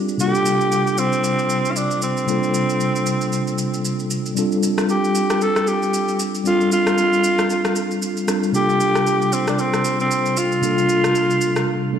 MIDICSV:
0, 0, Header, 1, 4, 480
1, 0, Start_track
1, 0, Tempo, 521739
1, 178, Time_signature, 4, 2, 24, 8
1, 11034, End_track
2, 0, Start_track
2, 0, Title_t, "Alto saxophone"
2, 0, Program_c, 0, 65
2, 189, Note_on_c, 0, 67, 117
2, 910, Note_on_c, 0, 60, 97
2, 924, Note_off_c, 0, 67, 0
2, 1580, Note_on_c, 0, 65, 65
2, 1593, Note_off_c, 0, 60, 0
2, 1629, Note_on_c, 0, 62, 92
2, 1643, Note_off_c, 0, 65, 0
2, 1864, Note_off_c, 0, 62, 0
2, 1869, Note_on_c, 0, 60, 94
2, 3747, Note_off_c, 0, 60, 0
2, 4510, Note_on_c, 0, 67, 92
2, 4989, Note_on_c, 0, 69, 105
2, 5003, Note_off_c, 0, 67, 0
2, 5228, Note_on_c, 0, 67, 88
2, 5242, Note_off_c, 0, 69, 0
2, 5703, Note_off_c, 0, 67, 0
2, 5950, Note_on_c, 0, 65, 110
2, 6168, Note_off_c, 0, 65, 0
2, 6189, Note_on_c, 0, 65, 121
2, 7587, Note_off_c, 0, 65, 0
2, 7870, Note_on_c, 0, 67, 117
2, 8590, Note_on_c, 0, 60, 92
2, 8604, Note_off_c, 0, 67, 0
2, 8724, Note_off_c, 0, 60, 0
2, 8729, Note_on_c, 0, 62, 83
2, 8829, Note_on_c, 0, 60, 89
2, 8843, Note_off_c, 0, 62, 0
2, 9203, Note_off_c, 0, 60, 0
2, 9208, Note_on_c, 0, 60, 86
2, 9550, Note_on_c, 0, 65, 103
2, 9564, Note_off_c, 0, 60, 0
2, 11034, Note_off_c, 0, 65, 0
2, 11034, End_track
3, 0, Start_track
3, 0, Title_t, "Tine electric piano"
3, 0, Program_c, 1, 4
3, 0, Control_c, 1, 64, 127
3, 0, Note_on_c, 1, 55, 54
3, 0, Note_on_c, 1, 60, 51
3, 0, Note_on_c, 1, 62, 51
3, 0, Note_on_c, 1, 65, 53
3, 0, Note_on_c, 1, 67, 63
3, 0, Note_on_c, 1, 68, 53
3, 0, Note_on_c, 1, 69, 66
3, 158, Note_off_c, 1, 55, 0
3, 162, Note_on_c, 1, 48, 62
3, 169, Note_on_c, 1, 55, 56
3, 172, Note_off_c, 1, 62, 0
3, 176, Note_on_c, 1, 58, 56
3, 177, Note_off_c, 1, 60, 0
3, 179, Note_off_c, 1, 65, 0
3, 183, Note_on_c, 1, 62, 57
3, 184, Note_off_c, 1, 67, 0
3, 189, Control_c, 1, 64, 0
3, 190, Note_on_c, 1, 65, 57
3, 191, Note_off_c, 1, 69, 0
3, 193, Note_off_c, 1, 68, 0
3, 197, Note_on_c, 1, 67, 56
3, 255, Note_off_c, 1, 67, 0
3, 255, Note_on_c, 1, 69, 68
3, 375, Control_c, 1, 64, 127
3, 2054, Note_off_c, 1, 48, 0
3, 2057, Note_off_c, 1, 55, 0
3, 2061, Note_off_c, 1, 58, 0
3, 2064, Note_off_c, 1, 62, 0
3, 2068, Note_off_c, 1, 65, 0
3, 2082, Note_on_c, 1, 48, 63
3, 2089, Note_on_c, 1, 55, 55
3, 2096, Note_on_c, 1, 58, 55
3, 2100, Note_off_c, 1, 69, 0
3, 2102, Note_on_c, 1, 62, 55
3, 2109, Note_on_c, 1, 65, 56
3, 2116, Note_on_c, 1, 69, 70
3, 3974, Note_off_c, 1, 48, 0
3, 3977, Note_off_c, 1, 55, 0
3, 3980, Note_off_c, 1, 58, 0
3, 3984, Note_off_c, 1, 62, 0
3, 3987, Note_off_c, 1, 65, 0
3, 3991, Note_off_c, 1, 69, 0
3, 4003, Note_on_c, 1, 55, 74
3, 4011, Note_on_c, 1, 60, 66
3, 4020, Note_on_c, 1, 62, 67
3, 4029, Control_c, 1, 64, 0
3, 4029, Note_on_c, 1, 65, 65
3, 4037, Note_on_c, 1, 69, 85
3, 4180, Control_c, 1, 64, 127
3, 5894, Note_off_c, 1, 55, 0
3, 5898, Note_off_c, 1, 60, 0
3, 5903, Note_off_c, 1, 62, 0
3, 5907, Note_off_c, 1, 65, 0
3, 5911, Note_off_c, 1, 69, 0
3, 5923, Note_on_c, 1, 55, 64
3, 5932, Note_on_c, 1, 60, 58
3, 5940, Note_on_c, 1, 62, 56
3, 5948, Note_on_c, 1, 65, 58
3, 5957, Note_on_c, 1, 69, 67
3, 7577, Note_off_c, 1, 55, 0
3, 7582, Note_off_c, 1, 60, 0
3, 7586, Note_off_c, 1, 62, 0
3, 7590, Note_off_c, 1, 65, 0
3, 7594, Note_off_c, 1, 69, 0
3, 7611, Note_on_c, 1, 55, 57
3, 7615, Note_on_c, 1, 60, 51
3, 7619, Note_on_c, 1, 62, 50
3, 7624, Note_on_c, 1, 65, 52
3, 7627, Note_on_c, 1, 69, 62
3, 7838, Note_off_c, 1, 55, 0
3, 7842, Note_on_c, 1, 48, 63
3, 7849, Note_on_c, 1, 55, 57
3, 7851, Note_off_c, 1, 62, 0
3, 7856, Note_on_c, 1, 58, 59
3, 7857, Note_off_c, 1, 60, 0
3, 7858, Note_off_c, 1, 65, 0
3, 7862, Note_on_c, 1, 62, 58
3, 7863, Note_off_c, 1, 69, 0
3, 7869, Note_on_c, 1, 65, 60
3, 7871, Control_c, 1, 64, 0
3, 7876, Note_on_c, 1, 69, 69
3, 8052, Control_c, 1, 64, 127
3, 9734, Note_off_c, 1, 48, 0
3, 9737, Note_off_c, 1, 55, 0
3, 9741, Note_off_c, 1, 58, 0
3, 9744, Note_off_c, 1, 62, 0
3, 9747, Note_off_c, 1, 65, 0
3, 9751, Note_off_c, 1, 69, 0
3, 9762, Note_on_c, 1, 48, 65
3, 9769, Note_on_c, 1, 55, 59
3, 9776, Note_on_c, 1, 58, 57
3, 9783, Note_on_c, 1, 62, 61
3, 9789, Note_on_c, 1, 65, 55
3, 9797, Note_on_c, 1, 69, 70
3, 10946, Note_off_c, 1, 48, 0
3, 10950, Note_off_c, 1, 55, 0
3, 10953, Note_off_c, 1, 58, 0
3, 10957, Note_off_c, 1, 62, 0
3, 10960, Note_off_c, 1, 65, 0
3, 10964, Note_off_c, 1, 69, 0
3, 10971, Note_on_c, 1, 48, 57
3, 10975, Note_on_c, 1, 55, 54
3, 10979, Note_on_c, 1, 58, 52
3, 10982, Note_on_c, 1, 62, 51
3, 10985, Note_on_c, 1, 65, 52
3, 10989, Note_on_c, 1, 69, 66
3, 11034, Note_off_c, 1, 48, 0
3, 11034, Note_off_c, 1, 55, 0
3, 11034, Note_off_c, 1, 58, 0
3, 11034, Note_off_c, 1, 62, 0
3, 11034, Note_off_c, 1, 65, 0
3, 11034, Note_off_c, 1, 69, 0
3, 11034, End_track
4, 0, Start_track
4, 0, Title_t, "Drums"
4, 79, Note_on_c, 9, 82, 52
4, 171, Note_off_c, 9, 82, 0
4, 179, Note_on_c, 9, 82, 88
4, 271, Note_off_c, 9, 82, 0
4, 319, Note_on_c, 9, 82, 48
4, 411, Note_off_c, 9, 82, 0
4, 419, Note_on_c, 9, 82, 93
4, 511, Note_off_c, 9, 82, 0
4, 560, Note_on_c, 9, 82, 53
4, 652, Note_off_c, 9, 82, 0
4, 661, Note_on_c, 9, 82, 79
4, 753, Note_off_c, 9, 82, 0
4, 801, Note_on_c, 9, 82, 52
4, 893, Note_off_c, 9, 82, 0
4, 898, Note_on_c, 9, 82, 101
4, 990, Note_off_c, 9, 82, 0
4, 1036, Note_on_c, 9, 82, 54
4, 1128, Note_off_c, 9, 82, 0
4, 1139, Note_on_c, 9, 82, 81
4, 1231, Note_off_c, 9, 82, 0
4, 1276, Note_on_c, 9, 82, 46
4, 1368, Note_off_c, 9, 82, 0
4, 1375, Note_on_c, 9, 82, 89
4, 1467, Note_off_c, 9, 82, 0
4, 1519, Note_on_c, 9, 82, 50
4, 1611, Note_off_c, 9, 82, 0
4, 1620, Note_on_c, 9, 82, 92
4, 1712, Note_off_c, 9, 82, 0
4, 1756, Note_on_c, 9, 82, 48
4, 1848, Note_off_c, 9, 82, 0
4, 1857, Note_on_c, 9, 82, 108
4, 1949, Note_off_c, 9, 82, 0
4, 1998, Note_on_c, 9, 82, 55
4, 2090, Note_off_c, 9, 82, 0
4, 2099, Note_on_c, 9, 82, 87
4, 2191, Note_off_c, 9, 82, 0
4, 2238, Note_on_c, 9, 82, 46
4, 2330, Note_off_c, 9, 82, 0
4, 2338, Note_on_c, 9, 82, 90
4, 2430, Note_off_c, 9, 82, 0
4, 2479, Note_on_c, 9, 82, 55
4, 2571, Note_off_c, 9, 82, 0
4, 2579, Note_on_c, 9, 82, 78
4, 2671, Note_off_c, 9, 82, 0
4, 2720, Note_on_c, 9, 82, 53
4, 2812, Note_off_c, 9, 82, 0
4, 2817, Note_on_c, 9, 82, 101
4, 2909, Note_off_c, 9, 82, 0
4, 2955, Note_on_c, 9, 82, 53
4, 3047, Note_off_c, 9, 82, 0
4, 3059, Note_on_c, 9, 82, 76
4, 3151, Note_off_c, 9, 82, 0
4, 3196, Note_on_c, 9, 82, 45
4, 3288, Note_off_c, 9, 82, 0
4, 3295, Note_on_c, 9, 82, 91
4, 3387, Note_off_c, 9, 82, 0
4, 3438, Note_on_c, 9, 82, 52
4, 3530, Note_off_c, 9, 82, 0
4, 3539, Note_on_c, 9, 82, 89
4, 3631, Note_off_c, 9, 82, 0
4, 3675, Note_on_c, 9, 82, 46
4, 3767, Note_off_c, 9, 82, 0
4, 3777, Note_on_c, 9, 82, 100
4, 3869, Note_off_c, 9, 82, 0
4, 3918, Note_on_c, 9, 82, 53
4, 4010, Note_off_c, 9, 82, 0
4, 4018, Note_on_c, 9, 82, 85
4, 4110, Note_off_c, 9, 82, 0
4, 4158, Note_on_c, 9, 82, 44
4, 4250, Note_off_c, 9, 82, 0
4, 4258, Note_on_c, 9, 82, 94
4, 4350, Note_off_c, 9, 82, 0
4, 4397, Note_on_c, 9, 37, 92
4, 4398, Note_on_c, 9, 82, 55
4, 4489, Note_off_c, 9, 37, 0
4, 4490, Note_off_c, 9, 82, 0
4, 4500, Note_on_c, 9, 82, 75
4, 4592, Note_off_c, 9, 82, 0
4, 4640, Note_on_c, 9, 82, 53
4, 4732, Note_off_c, 9, 82, 0
4, 4738, Note_on_c, 9, 82, 102
4, 4830, Note_off_c, 9, 82, 0
4, 4876, Note_on_c, 9, 82, 54
4, 4878, Note_on_c, 9, 37, 92
4, 4968, Note_off_c, 9, 82, 0
4, 4970, Note_off_c, 9, 37, 0
4, 4980, Note_on_c, 9, 82, 77
4, 5072, Note_off_c, 9, 82, 0
4, 5117, Note_on_c, 9, 37, 82
4, 5117, Note_on_c, 9, 82, 48
4, 5209, Note_off_c, 9, 37, 0
4, 5209, Note_off_c, 9, 82, 0
4, 5217, Note_on_c, 9, 82, 88
4, 5309, Note_off_c, 9, 82, 0
4, 5360, Note_on_c, 9, 82, 52
4, 5452, Note_off_c, 9, 82, 0
4, 5461, Note_on_c, 9, 82, 90
4, 5553, Note_off_c, 9, 82, 0
4, 5597, Note_on_c, 9, 82, 49
4, 5689, Note_off_c, 9, 82, 0
4, 5698, Note_on_c, 9, 82, 106
4, 5790, Note_off_c, 9, 82, 0
4, 5838, Note_on_c, 9, 82, 54
4, 5930, Note_off_c, 9, 82, 0
4, 5939, Note_on_c, 9, 82, 85
4, 6031, Note_off_c, 9, 82, 0
4, 6079, Note_on_c, 9, 82, 47
4, 6171, Note_off_c, 9, 82, 0
4, 6179, Note_on_c, 9, 82, 93
4, 6271, Note_off_c, 9, 82, 0
4, 6318, Note_on_c, 9, 37, 95
4, 6319, Note_on_c, 9, 82, 52
4, 6410, Note_off_c, 9, 37, 0
4, 6411, Note_off_c, 9, 82, 0
4, 6421, Note_on_c, 9, 82, 78
4, 6513, Note_off_c, 9, 82, 0
4, 6561, Note_on_c, 9, 82, 52
4, 6653, Note_off_c, 9, 82, 0
4, 6658, Note_on_c, 9, 82, 99
4, 6750, Note_off_c, 9, 82, 0
4, 6795, Note_on_c, 9, 82, 53
4, 6797, Note_on_c, 9, 37, 86
4, 6887, Note_off_c, 9, 82, 0
4, 6889, Note_off_c, 9, 37, 0
4, 6899, Note_on_c, 9, 82, 81
4, 6991, Note_off_c, 9, 82, 0
4, 7036, Note_on_c, 9, 37, 84
4, 7036, Note_on_c, 9, 82, 46
4, 7128, Note_off_c, 9, 37, 0
4, 7128, Note_off_c, 9, 82, 0
4, 7136, Note_on_c, 9, 82, 90
4, 7228, Note_off_c, 9, 82, 0
4, 7279, Note_on_c, 9, 82, 51
4, 7371, Note_off_c, 9, 82, 0
4, 7380, Note_on_c, 9, 82, 89
4, 7472, Note_off_c, 9, 82, 0
4, 7516, Note_on_c, 9, 82, 49
4, 7608, Note_off_c, 9, 82, 0
4, 7618, Note_on_c, 9, 82, 105
4, 7619, Note_on_c, 9, 37, 81
4, 7710, Note_off_c, 9, 82, 0
4, 7711, Note_off_c, 9, 37, 0
4, 7758, Note_on_c, 9, 82, 53
4, 7850, Note_off_c, 9, 82, 0
4, 7859, Note_on_c, 9, 82, 85
4, 7951, Note_off_c, 9, 82, 0
4, 7999, Note_on_c, 9, 82, 46
4, 8091, Note_off_c, 9, 82, 0
4, 8098, Note_on_c, 9, 82, 90
4, 8190, Note_off_c, 9, 82, 0
4, 8237, Note_on_c, 9, 37, 91
4, 8239, Note_on_c, 9, 82, 53
4, 8329, Note_off_c, 9, 37, 0
4, 8331, Note_off_c, 9, 82, 0
4, 8340, Note_on_c, 9, 82, 79
4, 8432, Note_off_c, 9, 82, 0
4, 8481, Note_on_c, 9, 82, 52
4, 8573, Note_off_c, 9, 82, 0
4, 8578, Note_on_c, 9, 82, 108
4, 8670, Note_off_c, 9, 82, 0
4, 8716, Note_on_c, 9, 82, 54
4, 8718, Note_on_c, 9, 37, 89
4, 8808, Note_off_c, 9, 82, 0
4, 8810, Note_off_c, 9, 37, 0
4, 8819, Note_on_c, 9, 82, 82
4, 8911, Note_off_c, 9, 82, 0
4, 8956, Note_on_c, 9, 37, 77
4, 8957, Note_on_c, 9, 82, 49
4, 9048, Note_off_c, 9, 37, 0
4, 9049, Note_off_c, 9, 82, 0
4, 9056, Note_on_c, 9, 82, 93
4, 9148, Note_off_c, 9, 82, 0
4, 9200, Note_on_c, 9, 82, 51
4, 9292, Note_off_c, 9, 82, 0
4, 9301, Note_on_c, 9, 82, 91
4, 9393, Note_off_c, 9, 82, 0
4, 9436, Note_on_c, 9, 82, 48
4, 9528, Note_off_c, 9, 82, 0
4, 9538, Note_on_c, 9, 82, 107
4, 9630, Note_off_c, 9, 82, 0
4, 9678, Note_on_c, 9, 82, 51
4, 9770, Note_off_c, 9, 82, 0
4, 9779, Note_on_c, 9, 82, 88
4, 9871, Note_off_c, 9, 82, 0
4, 9919, Note_on_c, 9, 82, 45
4, 10011, Note_off_c, 9, 82, 0
4, 10019, Note_on_c, 9, 82, 91
4, 10111, Note_off_c, 9, 82, 0
4, 10158, Note_on_c, 9, 37, 94
4, 10159, Note_on_c, 9, 82, 54
4, 10250, Note_off_c, 9, 37, 0
4, 10251, Note_off_c, 9, 82, 0
4, 10260, Note_on_c, 9, 82, 77
4, 10352, Note_off_c, 9, 82, 0
4, 10400, Note_on_c, 9, 82, 52
4, 10492, Note_off_c, 9, 82, 0
4, 10498, Note_on_c, 9, 82, 104
4, 10590, Note_off_c, 9, 82, 0
4, 10636, Note_on_c, 9, 82, 55
4, 10638, Note_on_c, 9, 37, 86
4, 10728, Note_off_c, 9, 82, 0
4, 10730, Note_off_c, 9, 37, 0
4, 11034, End_track
0, 0, End_of_file